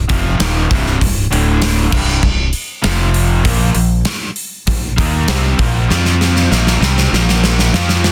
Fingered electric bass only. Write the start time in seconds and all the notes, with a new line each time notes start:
0.10 F1
0.39 D#1
1.31 D1
1.93 C1
2.23 C1
2.84 F1
3.45 A#1
3.75 A#1
4.67 A#1
4.98 D#2
5.28 C2
5.59 A#1
5.90 F2
6.52 A#1
6.81 C2
7.13 A#1
7.73 F2